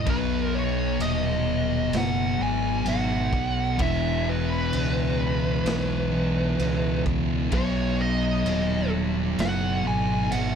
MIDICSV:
0, 0, Header, 1, 5, 480
1, 0, Start_track
1, 0, Tempo, 933126
1, 31, Time_signature, 4, 2, 24, 8
1, 5427, End_track
2, 0, Start_track
2, 0, Title_t, "Lead electric guitar"
2, 0, Program_c, 0, 29
2, 50, Note_on_c, 0, 71, 88
2, 231, Note_off_c, 0, 71, 0
2, 231, Note_on_c, 0, 70, 88
2, 283, Note_on_c, 0, 73, 86
2, 287, Note_off_c, 0, 70, 0
2, 523, Note_off_c, 0, 73, 0
2, 525, Note_on_c, 0, 75, 97
2, 1012, Note_off_c, 0, 75, 0
2, 1013, Note_on_c, 0, 78, 100
2, 1246, Note_off_c, 0, 78, 0
2, 1248, Note_on_c, 0, 80, 107
2, 1463, Note_off_c, 0, 80, 0
2, 1484, Note_on_c, 0, 78, 93
2, 1963, Note_on_c, 0, 76, 99
2, 1971, Note_off_c, 0, 78, 0
2, 2203, Note_off_c, 0, 76, 0
2, 2209, Note_on_c, 0, 71, 90
2, 3619, Note_off_c, 0, 71, 0
2, 3880, Note_on_c, 0, 73, 100
2, 4122, Note_off_c, 0, 73, 0
2, 4124, Note_on_c, 0, 75, 122
2, 4576, Note_off_c, 0, 75, 0
2, 4840, Note_on_c, 0, 78, 113
2, 5058, Note_off_c, 0, 78, 0
2, 5078, Note_on_c, 0, 80, 103
2, 5305, Note_off_c, 0, 80, 0
2, 5307, Note_on_c, 0, 78, 106
2, 5427, Note_off_c, 0, 78, 0
2, 5427, End_track
3, 0, Start_track
3, 0, Title_t, "Distorted electric guitar"
3, 0, Program_c, 1, 30
3, 30, Note_on_c, 1, 47, 88
3, 36, Note_on_c, 1, 54, 98
3, 44, Note_on_c, 1, 59, 102
3, 1215, Note_off_c, 1, 47, 0
3, 1218, Note_off_c, 1, 54, 0
3, 1227, Note_off_c, 1, 59, 0
3, 1229, Note_on_c, 1, 59, 87
3, 1237, Note_on_c, 1, 54, 83
3, 1242, Note_on_c, 1, 47, 72
3, 1459, Note_off_c, 1, 54, 0
3, 1461, Note_off_c, 1, 47, 0
3, 1469, Note_on_c, 1, 47, 74
3, 1474, Note_on_c, 1, 54, 76
3, 1479, Note_off_c, 1, 59, 0
3, 1481, Note_on_c, 1, 59, 91
3, 1935, Note_off_c, 1, 47, 0
3, 1938, Note_off_c, 1, 54, 0
3, 1946, Note_on_c, 1, 40, 94
3, 1952, Note_on_c, 1, 47, 105
3, 1957, Note_off_c, 1, 59, 0
3, 1959, Note_on_c, 1, 52, 111
3, 3133, Note_off_c, 1, 40, 0
3, 3136, Note_off_c, 1, 47, 0
3, 3140, Note_off_c, 1, 52, 0
3, 3146, Note_on_c, 1, 52, 90
3, 3152, Note_on_c, 1, 47, 81
3, 3156, Note_on_c, 1, 40, 78
3, 3373, Note_off_c, 1, 52, 0
3, 3374, Note_off_c, 1, 40, 0
3, 3376, Note_off_c, 1, 47, 0
3, 3380, Note_on_c, 1, 40, 70
3, 3388, Note_on_c, 1, 47, 80
3, 3392, Note_on_c, 1, 52, 86
3, 3850, Note_off_c, 1, 40, 0
3, 3854, Note_off_c, 1, 47, 0
3, 3856, Note_off_c, 1, 52, 0
3, 3865, Note_on_c, 1, 47, 89
3, 3872, Note_on_c, 1, 54, 105
3, 3876, Note_on_c, 1, 59, 107
3, 5052, Note_off_c, 1, 47, 0
3, 5056, Note_off_c, 1, 54, 0
3, 5063, Note_off_c, 1, 59, 0
3, 5065, Note_on_c, 1, 59, 87
3, 5072, Note_on_c, 1, 54, 80
3, 5076, Note_on_c, 1, 47, 71
3, 5293, Note_off_c, 1, 47, 0
3, 5296, Note_off_c, 1, 54, 0
3, 5299, Note_on_c, 1, 47, 82
3, 5306, Note_on_c, 1, 54, 79
3, 5309, Note_off_c, 1, 59, 0
3, 5311, Note_on_c, 1, 59, 81
3, 5427, Note_off_c, 1, 47, 0
3, 5427, Note_off_c, 1, 54, 0
3, 5427, Note_off_c, 1, 59, 0
3, 5427, End_track
4, 0, Start_track
4, 0, Title_t, "Fingered electric bass"
4, 0, Program_c, 2, 33
4, 33, Note_on_c, 2, 35, 92
4, 491, Note_off_c, 2, 35, 0
4, 510, Note_on_c, 2, 27, 94
4, 970, Note_off_c, 2, 27, 0
4, 993, Note_on_c, 2, 30, 97
4, 1219, Note_off_c, 2, 30, 0
4, 1230, Note_on_c, 2, 32, 88
4, 1458, Note_off_c, 2, 32, 0
4, 1466, Note_on_c, 2, 32, 94
4, 1696, Note_off_c, 2, 32, 0
4, 1710, Note_on_c, 2, 35, 92
4, 1938, Note_off_c, 2, 35, 0
4, 1952, Note_on_c, 2, 28, 90
4, 2410, Note_off_c, 2, 28, 0
4, 2432, Note_on_c, 2, 37, 90
4, 2890, Note_off_c, 2, 37, 0
4, 2902, Note_on_c, 2, 35, 106
4, 3365, Note_off_c, 2, 35, 0
4, 3387, Note_on_c, 2, 37, 88
4, 3848, Note_off_c, 2, 37, 0
4, 3868, Note_on_c, 2, 35, 99
4, 4328, Note_off_c, 2, 35, 0
4, 4342, Note_on_c, 2, 27, 84
4, 4805, Note_off_c, 2, 27, 0
4, 4827, Note_on_c, 2, 30, 101
4, 5056, Note_off_c, 2, 30, 0
4, 5069, Note_on_c, 2, 32, 82
4, 5297, Note_off_c, 2, 32, 0
4, 5308, Note_on_c, 2, 32, 85
4, 5427, Note_off_c, 2, 32, 0
4, 5427, End_track
5, 0, Start_track
5, 0, Title_t, "Drums"
5, 33, Note_on_c, 9, 49, 66
5, 34, Note_on_c, 9, 36, 111
5, 84, Note_off_c, 9, 49, 0
5, 86, Note_off_c, 9, 36, 0
5, 516, Note_on_c, 9, 49, 63
5, 567, Note_off_c, 9, 49, 0
5, 993, Note_on_c, 9, 49, 66
5, 1002, Note_on_c, 9, 38, 109
5, 1045, Note_off_c, 9, 49, 0
5, 1053, Note_off_c, 9, 38, 0
5, 1469, Note_on_c, 9, 49, 59
5, 1520, Note_off_c, 9, 49, 0
5, 1711, Note_on_c, 9, 36, 89
5, 1763, Note_off_c, 9, 36, 0
5, 1949, Note_on_c, 9, 49, 68
5, 1952, Note_on_c, 9, 36, 126
5, 2000, Note_off_c, 9, 49, 0
5, 2004, Note_off_c, 9, 36, 0
5, 2432, Note_on_c, 9, 49, 57
5, 2483, Note_off_c, 9, 49, 0
5, 2910, Note_on_c, 9, 49, 63
5, 2919, Note_on_c, 9, 38, 110
5, 2962, Note_off_c, 9, 49, 0
5, 2971, Note_off_c, 9, 38, 0
5, 3392, Note_on_c, 9, 49, 54
5, 3443, Note_off_c, 9, 49, 0
5, 3631, Note_on_c, 9, 36, 90
5, 3683, Note_off_c, 9, 36, 0
5, 3866, Note_on_c, 9, 49, 68
5, 3870, Note_on_c, 9, 36, 122
5, 3918, Note_off_c, 9, 49, 0
5, 3921, Note_off_c, 9, 36, 0
5, 4350, Note_on_c, 9, 49, 61
5, 4402, Note_off_c, 9, 49, 0
5, 4828, Note_on_c, 9, 49, 66
5, 4837, Note_on_c, 9, 38, 121
5, 4879, Note_off_c, 9, 49, 0
5, 4888, Note_off_c, 9, 38, 0
5, 5306, Note_on_c, 9, 49, 64
5, 5358, Note_off_c, 9, 49, 0
5, 5427, End_track
0, 0, End_of_file